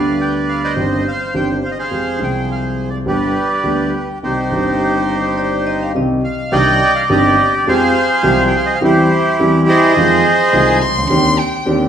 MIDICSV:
0, 0, Header, 1, 5, 480
1, 0, Start_track
1, 0, Key_signature, -3, "minor"
1, 0, Tempo, 573614
1, 1611, Time_signature, 4, 2, 24, 8
1, 9945, End_track
2, 0, Start_track
2, 0, Title_t, "Violin"
2, 0, Program_c, 0, 40
2, 8752, Note_on_c, 0, 83, 60
2, 8803, Note_on_c, 0, 80, 99
2, 8816, Note_off_c, 0, 83, 0
2, 9045, Note_on_c, 0, 84, 116
2, 9058, Note_off_c, 0, 80, 0
2, 9278, Note_off_c, 0, 84, 0
2, 9283, Note_on_c, 0, 84, 112
2, 9527, Note_on_c, 0, 79, 91
2, 9540, Note_off_c, 0, 84, 0
2, 9885, Note_off_c, 0, 79, 0
2, 9945, End_track
3, 0, Start_track
3, 0, Title_t, "Vibraphone"
3, 0, Program_c, 1, 11
3, 4012, Note_on_c, 1, 67, 61
3, 4463, Note_off_c, 1, 67, 0
3, 4499, Note_on_c, 1, 74, 71
3, 4723, Note_off_c, 1, 74, 0
3, 4741, Note_on_c, 1, 75, 74
3, 4865, Note_off_c, 1, 75, 0
3, 4877, Note_on_c, 1, 77, 72
3, 4928, Note_off_c, 1, 77, 0
3, 4988, Note_on_c, 1, 75, 68
3, 5433, Note_off_c, 1, 75, 0
3, 9945, End_track
4, 0, Start_track
4, 0, Title_t, "Bandoneon"
4, 0, Program_c, 2, 23
4, 0, Note_on_c, 2, 71, 69
4, 0, Note_on_c, 2, 74, 70
4, 0, Note_on_c, 2, 77, 74
4, 150, Note_off_c, 2, 77, 0
4, 176, Note_on_c, 2, 79, 74
4, 283, Note_off_c, 2, 79, 0
4, 407, Note_on_c, 2, 77, 80
4, 519, Note_off_c, 2, 77, 0
4, 537, Note_on_c, 2, 72, 56
4, 539, Note_on_c, 2, 75, 73
4, 615, Note_off_c, 2, 74, 0
4, 616, Note_off_c, 2, 71, 0
4, 870, Note_off_c, 2, 75, 0
4, 904, Note_on_c, 2, 77, 83
4, 1121, Note_off_c, 2, 77, 0
4, 1136, Note_on_c, 2, 79, 75
4, 1243, Note_off_c, 2, 79, 0
4, 1383, Note_on_c, 2, 77, 87
4, 1432, Note_off_c, 2, 77, 0
4, 1432, Note_on_c, 2, 75, 69
4, 1462, Note_off_c, 2, 72, 0
4, 1489, Note_off_c, 2, 75, 0
4, 1496, Note_on_c, 2, 68, 67
4, 1497, Note_on_c, 2, 72, 67
4, 1503, Note_on_c, 2, 77, 86
4, 1834, Note_off_c, 2, 77, 0
4, 1870, Note_on_c, 2, 79, 68
4, 2085, Note_off_c, 2, 79, 0
4, 2106, Note_on_c, 2, 77, 70
4, 2211, Note_off_c, 2, 77, 0
4, 2420, Note_off_c, 2, 68, 0
4, 2421, Note_off_c, 2, 72, 0
4, 2425, Note_on_c, 2, 74, 71
4, 2495, Note_off_c, 2, 74, 0
4, 2571, Note_on_c, 2, 71, 58
4, 2575, Note_on_c, 2, 67, 62
4, 2583, Note_on_c, 2, 74, 80
4, 3267, Note_off_c, 2, 74, 0
4, 3302, Note_off_c, 2, 71, 0
4, 3314, Note_on_c, 2, 71, 64
4, 3418, Note_off_c, 2, 71, 0
4, 3504, Note_off_c, 2, 67, 0
4, 3540, Note_on_c, 2, 67, 56
4, 3546, Note_on_c, 2, 63, 53
4, 3550, Note_on_c, 2, 72, 77
4, 4950, Note_off_c, 2, 67, 0
4, 4953, Note_off_c, 2, 63, 0
4, 4955, Note_off_c, 2, 72, 0
4, 5224, Note_on_c, 2, 77, 79
4, 5457, Note_on_c, 2, 74, 87
4, 5458, Note_on_c, 2, 79, 114
4, 5463, Note_on_c, 2, 75, 84
4, 5471, Note_off_c, 2, 77, 0
4, 5796, Note_off_c, 2, 79, 0
4, 5821, Note_on_c, 2, 77, 95
4, 5876, Note_off_c, 2, 77, 0
4, 5936, Note_off_c, 2, 75, 0
4, 5948, Note_on_c, 2, 75, 97
4, 5956, Note_on_c, 2, 67, 70
4, 6294, Note_off_c, 2, 74, 0
4, 6306, Note_on_c, 2, 74, 82
4, 6317, Note_off_c, 2, 75, 0
4, 6397, Note_off_c, 2, 67, 0
4, 6428, Note_on_c, 2, 77, 105
4, 6429, Note_off_c, 2, 74, 0
4, 6432, Note_on_c, 2, 72, 77
4, 6433, Note_on_c, 2, 68, 77
4, 7048, Note_off_c, 2, 77, 0
4, 7088, Note_on_c, 2, 79, 80
4, 7159, Note_off_c, 2, 79, 0
4, 7166, Note_on_c, 2, 77, 89
4, 7236, Note_off_c, 2, 77, 0
4, 7246, Note_on_c, 2, 75, 91
4, 7314, Note_off_c, 2, 75, 0
4, 7321, Note_on_c, 2, 77, 87
4, 7352, Note_off_c, 2, 68, 0
4, 7352, Note_off_c, 2, 72, 0
4, 7389, Note_off_c, 2, 77, 0
4, 7396, Note_on_c, 2, 64, 66
4, 7397, Note_on_c, 2, 67, 61
4, 7402, Note_on_c, 2, 72, 87
4, 7836, Note_off_c, 2, 72, 0
4, 8105, Note_on_c, 2, 75, 127
4, 8111, Note_on_c, 2, 72, 88
4, 8112, Note_on_c, 2, 68, 87
4, 8309, Note_off_c, 2, 64, 0
4, 8310, Note_off_c, 2, 67, 0
4, 9022, Note_off_c, 2, 75, 0
4, 9025, Note_off_c, 2, 68, 0
4, 9025, Note_off_c, 2, 72, 0
4, 9945, End_track
5, 0, Start_track
5, 0, Title_t, "Grand piano"
5, 0, Program_c, 3, 0
5, 0, Note_on_c, 3, 38, 66
5, 0, Note_on_c, 3, 50, 63
5, 0, Note_on_c, 3, 55, 50
5, 0, Note_on_c, 3, 59, 52
5, 0, Note_on_c, 3, 67, 57
5, 608, Note_off_c, 3, 55, 0
5, 611, Note_off_c, 3, 38, 0
5, 612, Note_off_c, 3, 50, 0
5, 614, Note_off_c, 3, 59, 0
5, 622, Note_off_c, 3, 67, 0
5, 636, Note_on_c, 3, 60, 57
5, 637, Note_on_c, 3, 43, 72
5, 640, Note_on_c, 3, 31, 71
5, 640, Note_on_c, 3, 51, 53
5, 640, Note_on_c, 3, 67, 65
5, 641, Note_on_c, 3, 62, 55
5, 845, Note_off_c, 3, 43, 0
5, 845, Note_off_c, 3, 60, 0
5, 847, Note_off_c, 3, 31, 0
5, 847, Note_off_c, 3, 51, 0
5, 847, Note_off_c, 3, 62, 0
5, 847, Note_off_c, 3, 67, 0
5, 1116, Note_on_c, 3, 43, 70
5, 1118, Note_on_c, 3, 51, 58
5, 1122, Note_on_c, 3, 60, 56
5, 1123, Note_on_c, 3, 31, 74
5, 1124, Note_on_c, 3, 62, 57
5, 1126, Note_on_c, 3, 67, 70
5, 1326, Note_off_c, 3, 43, 0
5, 1326, Note_off_c, 3, 51, 0
5, 1328, Note_off_c, 3, 60, 0
5, 1329, Note_off_c, 3, 31, 0
5, 1329, Note_off_c, 3, 62, 0
5, 1330, Note_off_c, 3, 67, 0
5, 1598, Note_on_c, 3, 53, 46
5, 1598, Note_on_c, 3, 56, 37
5, 1600, Note_on_c, 3, 60, 36
5, 1600, Note_on_c, 3, 67, 43
5, 1603, Note_on_c, 3, 41, 47
5, 1807, Note_off_c, 3, 56, 0
5, 1807, Note_off_c, 3, 60, 0
5, 1808, Note_off_c, 3, 67, 0
5, 1809, Note_off_c, 3, 41, 0
5, 1809, Note_off_c, 3, 53, 0
5, 1825, Note_on_c, 3, 53, 57
5, 1836, Note_on_c, 3, 56, 49
5, 1838, Note_on_c, 3, 36, 67
5, 1839, Note_on_c, 3, 48, 62
5, 1846, Note_on_c, 3, 60, 50
5, 1859, Note_on_c, 3, 79, 61
5, 2524, Note_off_c, 3, 53, 0
5, 2530, Note_off_c, 3, 56, 0
5, 2531, Note_off_c, 3, 36, 0
5, 2531, Note_off_c, 3, 48, 0
5, 2535, Note_off_c, 3, 60, 0
5, 2541, Note_off_c, 3, 79, 0
5, 2558, Note_on_c, 3, 31, 75
5, 2559, Note_on_c, 3, 67, 70
5, 2560, Note_on_c, 3, 43, 75
5, 2560, Note_on_c, 3, 50, 65
5, 2561, Note_on_c, 3, 55, 53
5, 2561, Note_on_c, 3, 59, 56
5, 2768, Note_off_c, 3, 31, 0
5, 2769, Note_off_c, 3, 43, 0
5, 2769, Note_off_c, 3, 50, 0
5, 2769, Note_off_c, 3, 55, 0
5, 2769, Note_off_c, 3, 59, 0
5, 2769, Note_off_c, 3, 67, 0
5, 3040, Note_on_c, 3, 50, 73
5, 3042, Note_on_c, 3, 55, 58
5, 3044, Note_on_c, 3, 38, 72
5, 3044, Note_on_c, 3, 59, 57
5, 3046, Note_on_c, 3, 67, 70
5, 3251, Note_off_c, 3, 55, 0
5, 3252, Note_off_c, 3, 38, 0
5, 3252, Note_off_c, 3, 50, 0
5, 3252, Note_off_c, 3, 59, 0
5, 3253, Note_off_c, 3, 67, 0
5, 3540, Note_on_c, 3, 55, 36
5, 3541, Note_on_c, 3, 36, 45
5, 3542, Note_on_c, 3, 51, 38
5, 3543, Note_on_c, 3, 48, 46
5, 3545, Note_on_c, 3, 60, 36
5, 3546, Note_on_c, 3, 67, 43
5, 3740, Note_off_c, 3, 55, 0
5, 3741, Note_off_c, 3, 36, 0
5, 3741, Note_off_c, 3, 48, 0
5, 3741, Note_off_c, 3, 51, 0
5, 3743, Note_off_c, 3, 60, 0
5, 3743, Note_off_c, 3, 67, 0
5, 3758, Note_on_c, 3, 51, 57
5, 3768, Note_on_c, 3, 55, 50
5, 3774, Note_on_c, 3, 31, 69
5, 3775, Note_on_c, 3, 43, 64
5, 3780, Note_on_c, 3, 60, 52
5, 3792, Note_on_c, 3, 67, 64
5, 4912, Note_off_c, 3, 51, 0
5, 4917, Note_off_c, 3, 55, 0
5, 4920, Note_off_c, 3, 31, 0
5, 4921, Note_off_c, 3, 43, 0
5, 4923, Note_off_c, 3, 60, 0
5, 4929, Note_off_c, 3, 67, 0
5, 4976, Note_on_c, 3, 51, 57
5, 4978, Note_on_c, 3, 67, 69
5, 4979, Note_on_c, 3, 36, 67
5, 4979, Note_on_c, 3, 48, 71
5, 4981, Note_on_c, 3, 55, 58
5, 4981, Note_on_c, 3, 60, 54
5, 5182, Note_off_c, 3, 51, 0
5, 5182, Note_off_c, 3, 67, 0
5, 5183, Note_off_c, 3, 36, 0
5, 5183, Note_off_c, 3, 48, 0
5, 5184, Note_off_c, 3, 55, 0
5, 5184, Note_off_c, 3, 60, 0
5, 5454, Note_on_c, 3, 48, 93
5, 5455, Note_on_c, 3, 36, 91
5, 5455, Note_on_c, 3, 62, 68
5, 5456, Note_on_c, 3, 51, 74
5, 5457, Note_on_c, 3, 60, 69
5, 5460, Note_on_c, 3, 67, 80
5, 5661, Note_off_c, 3, 36, 0
5, 5661, Note_off_c, 3, 48, 0
5, 5661, Note_off_c, 3, 62, 0
5, 5662, Note_off_c, 3, 51, 0
5, 5662, Note_off_c, 3, 60, 0
5, 5664, Note_off_c, 3, 67, 0
5, 5934, Note_on_c, 3, 51, 76
5, 5935, Note_on_c, 3, 43, 91
5, 5937, Note_on_c, 3, 31, 88
5, 5937, Note_on_c, 3, 62, 70
5, 5938, Note_on_c, 3, 60, 71
5, 5939, Note_on_c, 3, 67, 89
5, 6141, Note_off_c, 3, 51, 0
5, 6142, Note_off_c, 3, 31, 0
5, 6142, Note_off_c, 3, 43, 0
5, 6143, Note_off_c, 3, 60, 0
5, 6143, Note_off_c, 3, 62, 0
5, 6143, Note_off_c, 3, 67, 0
5, 6419, Note_on_c, 3, 53, 93
5, 6422, Note_on_c, 3, 56, 69
5, 6423, Note_on_c, 3, 60, 73
5, 6423, Note_on_c, 3, 67, 83
5, 6424, Note_on_c, 3, 41, 96
5, 6623, Note_off_c, 3, 53, 0
5, 6624, Note_off_c, 3, 56, 0
5, 6625, Note_off_c, 3, 41, 0
5, 6625, Note_off_c, 3, 60, 0
5, 6625, Note_off_c, 3, 67, 0
5, 6886, Note_on_c, 3, 53, 78
5, 6886, Note_on_c, 3, 56, 72
5, 6887, Note_on_c, 3, 48, 90
5, 6889, Note_on_c, 3, 36, 96
5, 6891, Note_on_c, 3, 60, 76
5, 6892, Note_on_c, 3, 67, 86
5, 7095, Note_off_c, 3, 53, 0
5, 7095, Note_off_c, 3, 56, 0
5, 7096, Note_off_c, 3, 48, 0
5, 7097, Note_off_c, 3, 36, 0
5, 7098, Note_off_c, 3, 60, 0
5, 7098, Note_off_c, 3, 67, 0
5, 7372, Note_on_c, 3, 55, 67
5, 7373, Note_on_c, 3, 52, 84
5, 7373, Note_on_c, 3, 60, 67
5, 7374, Note_on_c, 3, 40, 90
5, 7378, Note_on_c, 3, 67, 85
5, 7577, Note_off_c, 3, 55, 0
5, 7578, Note_off_c, 3, 40, 0
5, 7578, Note_off_c, 3, 60, 0
5, 7579, Note_off_c, 3, 52, 0
5, 7580, Note_off_c, 3, 67, 0
5, 7859, Note_on_c, 3, 52, 92
5, 7862, Note_on_c, 3, 55, 71
5, 7863, Note_on_c, 3, 60, 73
5, 7866, Note_on_c, 3, 40, 94
5, 7866, Note_on_c, 3, 67, 84
5, 8061, Note_off_c, 3, 55, 0
5, 8061, Note_off_c, 3, 60, 0
5, 8062, Note_off_c, 3, 52, 0
5, 8063, Note_off_c, 3, 40, 0
5, 8063, Note_off_c, 3, 67, 0
5, 8333, Note_on_c, 3, 51, 77
5, 8338, Note_on_c, 3, 53, 90
5, 8338, Note_on_c, 3, 56, 71
5, 8339, Note_on_c, 3, 60, 74
5, 8341, Note_on_c, 3, 41, 98
5, 8342, Note_on_c, 3, 65, 90
5, 8534, Note_off_c, 3, 51, 0
5, 8537, Note_off_c, 3, 53, 0
5, 8537, Note_off_c, 3, 56, 0
5, 8538, Note_off_c, 3, 41, 0
5, 8538, Note_off_c, 3, 60, 0
5, 8539, Note_off_c, 3, 65, 0
5, 8807, Note_on_c, 3, 51, 81
5, 8809, Note_on_c, 3, 48, 94
5, 8809, Note_on_c, 3, 60, 73
5, 8811, Note_on_c, 3, 36, 90
5, 8812, Note_on_c, 3, 56, 76
5, 8817, Note_on_c, 3, 65, 94
5, 9010, Note_off_c, 3, 51, 0
5, 9011, Note_off_c, 3, 48, 0
5, 9011, Note_off_c, 3, 60, 0
5, 9012, Note_off_c, 3, 36, 0
5, 9013, Note_off_c, 3, 56, 0
5, 9015, Note_off_c, 3, 65, 0
5, 9108, Note_on_c, 3, 36, 53
5, 9169, Note_off_c, 3, 36, 0
5, 9173, Note_on_c, 3, 37, 69
5, 9232, Note_off_c, 3, 37, 0
5, 9234, Note_on_c, 3, 38, 76
5, 9287, Note_on_c, 3, 51, 92
5, 9290, Note_on_c, 3, 39, 97
5, 9290, Note_on_c, 3, 60, 71
5, 9290, Note_on_c, 3, 62, 72
5, 9290, Note_on_c, 3, 67, 90
5, 9291, Note_off_c, 3, 38, 0
5, 9489, Note_off_c, 3, 51, 0
5, 9490, Note_off_c, 3, 39, 0
5, 9490, Note_off_c, 3, 60, 0
5, 9490, Note_off_c, 3, 62, 0
5, 9490, Note_off_c, 3, 67, 0
5, 9753, Note_on_c, 3, 51, 97
5, 9757, Note_on_c, 3, 60, 77
5, 9760, Note_on_c, 3, 39, 91
5, 9760, Note_on_c, 3, 62, 78
5, 9761, Note_on_c, 3, 67, 88
5, 9945, Note_off_c, 3, 39, 0
5, 9945, Note_off_c, 3, 51, 0
5, 9945, Note_off_c, 3, 60, 0
5, 9945, Note_off_c, 3, 62, 0
5, 9945, Note_off_c, 3, 67, 0
5, 9945, End_track
0, 0, End_of_file